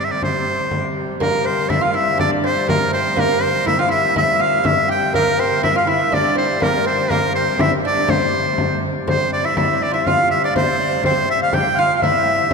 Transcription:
0.00 1.21 C3 medium
0.00 1.21 G3 medium
0.04 0.13 E5 medium
0.12 0.23 D5 medium
0.22 0.93 C5 medium
0.22 frame drum medium
0.71 frame drum medium
1.20 5.15 C3 medium
1.20 5.14 G3 medium
1.20 1.44 A#3 medium
1.20 1.66 A#4 medium
1.20 1.47 A#4 medium
1.20 frame drum medium
1.44 1.70 C4 medium
1.44 1.71 C5 medium
1.44 frame drum soft
1.70 1.81 E4 medium
1.70 1.79 D5 medium
1.70 1.84 E5 medium
1.70 1.75 E5 medium
1.70 frame drum medium
1.78 1.93 F4 medium
1.78 1.83 E5 medium
1.82 1.97 F5 medium
1.82 1.89 F5 medium
1.94 2.17 E4 medium
1.94 2.22 E5 medium
1.94 2.19 E5 medium
2.18 2.44 D4 medium
2.18 2.31 D5 medium
2.18 2.45 D5 medium
2.18 frame drum medium
2.44 2.67 C4 medium
2.44 2.70 C5 medium
2.44 2.67 C5 medium
2.44 frame drum soft
2.68 2.93 A#3 medium
2.68 2.93 A#4 medium
2.68 2.92 A#4 medium
2.68 frame drum medium
2.93 3.16 C4 medium
2.93 3.00 C5 medium
2.93 3.21 C5 medium
3.16 3.40 A#3 medium
3.16 3.44 A#4 medium
3.16 frame drum medium
3.41 3.67 C4 medium
3.41 3.66 C5 medium
3.41 frame drum soft
3.66 3.78 E4 medium
3.66 3.75 E5 medium
3.66 3.81 E5 medium
3.66 frame drum medium
3.78 3.88 F4 medium
3.78 3.90 F5 medium
3.78 3.92 F5 medium
3.78 3.81 G5 medium
3.89 4.15 E4 medium
3.89 4.15 E5 medium
3.89 4.14 E5 medium
4.15 4.39 E4 medium
4.15 4.61 E5 medium
4.15 4.43 E5 medium
4.15 frame drum medium
4.39 4.63 F4 medium
4.39 4.68 F5 medium
4.63 4.90 E4 medium
4.63 4.89 E5 medium
4.63 4.90 E5 medium
4.63 frame drum medium
4.88 5.15 G4 medium
4.88 5.12 G5 medium
4.88 5.13 G5 medium
5.12 9.07 C3 medium
5.12 9.07 G3 medium
5.12 5.37 A#3 medium
5.12 5.59 A#4 medium
5.12 5.41 A#4 medium
5.12 frame drum medium
5.39 5.64 C4 medium
5.39 5.63 C5 medium
5.39 frame drum soft
5.63 5.75 E4 medium
5.63 5.74 E5 medium
5.63 5.75 E5 medium
5.63 frame drum medium
5.74 5.87 F4 medium
5.74 5.89 F5 medium
5.74 5.90 F5 medium
5.87 6.12 E4 medium
5.87 6.11 E5 medium
5.87 6.16 E5 medium
6.11 6.38 D4 medium
6.11 6.58 D5 medium
6.11 6.37 D5 medium
6.11 frame drum medium
6.35 6.60 C4 medium
6.35 6.65 C5 medium
6.35 frame drum soft
6.60 6.85 A#3 medium
6.60 6.87 A#4 medium
6.60 6.86 A#4 medium
6.60 frame drum medium
6.86 7.11 C4 medium
6.86 7.10 C5 medium
6.86 7.12 C5 medium
7.09 7.36 A#3 medium
7.09 7.32 A#4 medium
7.09 7.35 A#4 medium
7.09 frame drum medium
7.33 7.61 C4 medium
7.33 7.59 C5 medium
7.33 7.62 C5 medium
7.33 frame drum soft
7.57 7.72 E4 medium
7.57 7.71 E5 medium
7.57 7.73 E5 medium
7.57 frame drum medium
7.85 8.10 D4 medium
7.85 8.12 D5 medium
8.08 8.78 C4 medium
8.08 8.78 C5 medium
8.08 8.84 C5 medium
8.08 frame drum medium
8.35 frame drum soft
8.58 frame drum medium
9.07 12.54 C3 medium
9.07 12.54 G3 medium
9.07 9.45 C4 medium
9.07 9.15 C5 medium
9.07 9.31 C5 medium
9.07 frame drum medium
9.31 9.45 D5 medium
9.31 9.47 D5 medium
9.44 9.56 E4 medium
9.44 9.52 D5 medium
9.44 9.48 E5 medium
9.44 9.57 E5 medium
9.50 9.56 E5 medium
9.56 9.88 E4 medium
9.56 9.82 E5 medium
9.56 9.84 E5 medium
9.56 frame drum medium
9.80 9.94 D5 medium
9.80 frame drum soft
9.92 10.06 E4 medium
9.92 9.94 F4 soft
9.92 10.08 E5 medium
9.92 10.09 E5 medium
10.06 10.44 F4 medium
10.06 10.31 F5 medium
10.06 frame drum medium
10.30 10.44 E5 medium
10.30 10.42 E5 medium
10.43 10.56 D4 medium
10.43 10.58 D5 medium
10.43 10.55 D5 medium
10.56 11.05 C4 medium
10.56 10.80 C5 medium
10.56 11.01 C5 medium
10.56 frame drum medium
10.79 11.03 D5 medium
10.79 frame drum soft
11.02 11.56 C4 medium
11.02 11.27 C5 medium
11.02 frame drum medium
11.06 11.28 C5 medium
11.28 11.40 E5 medium
11.28 11.41 E5 medium
11.41 11.51 F5 medium
11.41 11.56 F5 medium
11.51 11.79 G4 medium
11.51 11.76 G5 medium
11.51 11.81 G5 loud
11.51 frame drum medium
11.75 12.03 F4 medium
11.75 12.01 F5 medium
11.75 frame drum soft
11.79 11.95 F5 medium
11.95 12.05 F5 medium
11.99 12.54 E5 medium
11.99 frame drum medium
12.04 12.50 E4 medium
12.04 12.54 E5 medium
12.27 frame drum soft

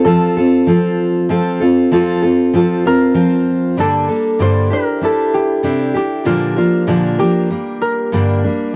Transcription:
0.00 0.49 C5 loud
0.05 0.37 F3 medium
0.05 0.37 C4 medium
0.05 0.37 F4 medium
0.05 2.24 A4 medium
0.05 0.36 A4 medium
0.37 0.67 C4 soft
0.37 0.68 F4 medium
0.37 0.68 A4 medium
0.67 1.28 F3 medium
0.67 1.29 C4 medium
0.67 1.29 F4 medium
0.67 1.30 A4 medium
1.29 1.60 F3 medium
1.29 1.61 C4 medium
1.29 1.60 F4 medium
1.29 1.59 A4 medium
1.60 1.91 C4 soft
1.60 1.92 F4 medium
1.60 1.91 A4 soft
1.92 2.23 F3 medium
1.92 2.23 C4 medium
1.92 2.23 F4 medium
1.92 2.21 A4 medium
2.22 2.53 C4 soft
2.22 2.54 F4 medium
2.22 2.54 A4 medium
2.54 2.85 F3 medium
2.54 2.85 C4 medium
2.54 2.84 F4 medium
2.54 2.86 A4 medium
2.86 3.14 C4 soft
2.86 3.15 F4 medium
2.86 3.86 A#4 loud
3.14 3.77 F3 medium
3.14 3.77 C4 medium
3.14 3.78 F4 medium
3.77 4.08 G2 medium
3.77 4.09 D3 medium
3.77 4.09 G3 medium
3.77 4.09 A#3 medium
3.77 4.08 D4 medium
3.77 4.07 A4 medium
3.77 4.79 A4 medium
4.08 4.39 G3 soft
4.08 4.39 A#3 soft
4.08 4.39 D4 soft
4.08 4.39 A4 soft
4.39 4.70 G2 medium
4.39 4.71 D3 medium
4.39 4.71 G3 medium
4.39 4.71 A#3 medium
4.39 4.71 D4 medium
4.39 4.70 A4 medium
4.39 6.40 C5 medium
4.70 5.01 D4 soft
4.70 5.02 E4 soft
4.70 5.02 G4 soft
4.70 5.11 A#4 medium
5.01 5.63 G3 soft
5.01 5.63 D4 medium
5.01 5.63 E4 medium
5.01 5.64 G4 medium
5.01 7.24 A4 medium
5.34 5.96 G4 medium
5.63 5.95 C3 medium
5.63 5.95 G3 medium
5.63 5.95 D4 medium
5.63 5.94 E4 medium
5.63 5.93 G4 medium
5.94 6.25 D4 soft
5.94 6.26 E4 soft
5.94 6.26 G4 soft
5.94 7.19 G4 medium
6.25 6.57 A#2 medium
6.25 6.57 D3 medium
6.25 6.57 F3 medium
6.25 6.57 A#3 medium
6.25 6.56 D4 medium
6.25 6.57 F4 medium
6.25 6.55 A#4 medium
6.56 6.87 F3 soft
6.56 6.87 A#3 soft
6.56 6.87 D4 soft
6.56 8.76 F4 medium
6.56 6.88 A#4 soft
6.87 7.19 A#2 medium
6.87 7.19 D3 medium
6.87 7.19 F3 medium
6.87 7.19 A#3 medium
6.87 7.18 D4 medium
6.87 7.17 A#4 medium
7.18 7.50 F3 soft
7.18 7.50 A#3 soft
7.18 7.50 D4 soft
7.18 8.76 G4 medium
7.18 7.50 A#4 soft
7.50 8.12 G3 medium
7.50 8.13 A#3 soft
7.50 8.13 D4 medium
7.81 8.76 A#4 medium
8.12 8.43 G2 medium
8.12 8.44 D3 medium
8.12 8.44 G3 medium
8.12 8.44 A#3 medium
8.12 8.43 D4 medium
8.44 8.74 G3 soft
8.44 8.75 A#3 soft
8.44 8.75 D4 soft

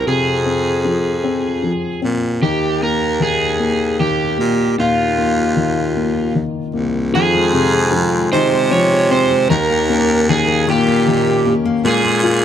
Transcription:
0.00 0.85 F3 soft
0.00 0.46 C4 soft
0.06 1.72 F2 medium
0.06 2.38 C3 medium
0.06 2.00 G#4 medium
0.46 1.22 C4 soft
0.85 1.61 F3 soft
1.24 2.00 C4 medium
1.63 2.40 F3 soft
2.02 2.40 A#2 medium
2.02 2.41 C4 soft
2.42 4.35 D#2 medium
2.42 3.18 D#3 medium
2.42 2.83 G4 medium
2.82 3.58 A#3 soft
2.82 3.22 A#4 medium
3.20 3.98 D#3 soft
3.20 4.00 G#4 medium
3.60 4.37 A#3 soft
4.00 5.53 D#3 soft
4.00 4.74 G4 medium
4.38 4.76 A#2 medium
4.38 5.17 A#3 soft
4.78 6.44 D#2 medium
4.78 7.10 A#2 medium
4.78 6.32 F4 medium
5.18 5.95 A#3 soft
5.56 6.34 D#3 soft
5.96 6.72 A#3 soft
6.35 7.12 D#3 soft
6.74 7.12 C2 medium
6.74 7.12 A#3 soft
7.14 8.28 F2 loud
7.14 8.32 D#3 medium
7.14 7.91 F3 medium
7.14 7.89 G#4 loud
7.35 8.11 G#3 medium
7.53 9.06 C3 medium
7.53 7.92 C4 medium
7.74 8.91 G#4 medium
7.92 8.70 F3 soft
7.92 8.71 C4 medium
8.13 8.51 G#3 medium
8.32 9.46 C3 medium
8.32 9.50 D#3 medium
8.32 9.46 D#4 medium
8.32 8.71 C5 loud
8.52 9.30 G#3 medium
8.71 9.47 F3 medium
8.71 9.11 C#5 loud
8.92 9.58 G#4 medium
9.10 9.48 C4 medium
9.10 9.58 C4 medium
9.10 9.48 C5 loud
9.31 9.58 G#3 medium
9.50 10.64 D#2 loud
9.50 10.28 D#3 medium
9.50 10.66 D#3 medium
9.50 10.29 A#4 medium
9.70 10.47 A#3 medium
9.90 10.67 A#3 medium
9.90 10.28 C#4 medium
10.28 11.06 D#3 medium
10.28 11.06 C#4 medium
10.28 10.69 G#4 medium
10.48 10.87 A#3 medium
10.67 11.54 A#2 medium
10.67 11.93 D#3 medium
10.67 11.45 A#3 medium
10.67 11.53 G4 medium
10.87 11.65 A#3 medium
11.07 11.83 D#3 soft
11.07 11.45 C#4 medium
11.26 11.93 G4 medium
11.45 11.84 A#3 soft
11.45 12.24 C#4 medium
11.65 11.84 A#3 medium
11.85 12.45 A#2 loud
11.85 12.04 G#3 medium
11.85 12.45 A#3 medium
11.85 12.45 G#4 medium
12.04 12.45 G#3 medium
12.24 12.45 C#4 medium
12.24 12.45 F4 medium

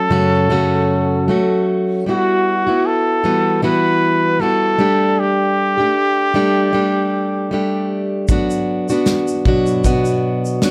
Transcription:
0.00 0.10 A3 soft
0.00 0.10 C#4 soft
0.00 0.10 F#4 soft
0.00 1.67 A4 medium
0.10 0.49 F#2 medium
0.10 0.49 C#3 medium
0.10 0.49 F#3 medium
0.10 0.50 A3 medium
0.10 0.50 C#4 medium
0.10 0.50 F#4 medium
0.50 1.27 F#2 medium
0.50 1.27 C#3 medium
0.50 1.28 F#3 medium
0.50 1.28 A3 medium
0.50 1.28 C#4 medium
0.50 1.30 F#4 medium
1.28 2.06 F#3 medium
1.28 2.06 A3 medium
1.28 2.07 C#4 medium
1.28 2.09 F#4 medium
2.06 2.66 G3 medium
2.06 2.67 B3 medium
2.06 2.67 E4 medium
2.06 2.66 F#4 medium
2.06 2.88 F#4 medium
2.67 3.24 B3 soft
2.67 3.23 E4 soft
2.67 3.23 F#4 medium
2.86 3.62 A4 medium
3.24 3.61 E3 medium
3.24 3.61 G3 medium
3.24 3.62 B3 medium
3.24 3.62 E4 medium
3.24 3.62 F#4 medium
3.62 4.40 E3 medium
3.62 4.39 G3 medium
3.62 4.40 B3 medium
3.62 4.40 E4 medium
3.62 4.40 F#4 medium
3.62 4.42 B4 medium
4.40 4.77 G3 medium
4.40 4.79 B3 medium
4.40 4.79 E4 medium
4.40 4.80 F#4 medium
4.40 5.21 A4 medium
4.78 5.78 G3 medium
4.78 5.78 A3 medium
4.78 5.79 D4 medium
4.78 5.77 G4 medium
5.20 7.91 G4 medium
5.78 6.34 A3 soft
5.78 6.34 D4 soft
5.78 6.34 G4 soft
6.34 6.72 G3 medium
6.34 6.72 A3 medium
6.34 6.73 D4 medium
6.34 6.73 G4 medium
6.73 7.50 G3 medium
6.73 7.51 A3 medium
6.73 7.52 D4 medium
6.73 7.51 G4 medium
7.51 8.28 G3 medium
7.51 8.29 A3 medium
7.51 8.31 D4 medium
7.51 8.30 G4 medium
8.28 8.89 F#3 medium
8.28 8.90 B3 medium
8.28 8.89 D4 medium
8.28 8.89 F#4 medium
8.28 kick medium
8.28 shaker medium
8.50 shaker soft
8.89 9.46 B3 soft
8.89 9.46 D4 soft
8.89 9.46 F#4 medium
8.89 shaker soft
9.06 snare medium
9.06 shaker medium
9.28 shaker soft
9.45 9.83 B2 medium
9.45 9.84 F#3 medium
9.45 9.84 B3 medium
9.45 9.85 D4 medium
9.45 9.85 F#4 medium
9.45 kick medium
9.66 shaker soft
9.84 10.62 B2 medium
9.84 10.62 F#3 medium
9.84 10.62 B3 medium
9.84 10.63 D4 medium
9.84 10.65 F#4 medium
9.84 kick medium
9.84 shaker medium
10.05 shaker soft
10.45 shaker soft
10.62 10.71 F#3 medium
10.62 10.71 B3 medium
10.62 10.71 D4 medium
10.62 10.71 F#4 medium
10.62 snare medium
10.62 shaker medium

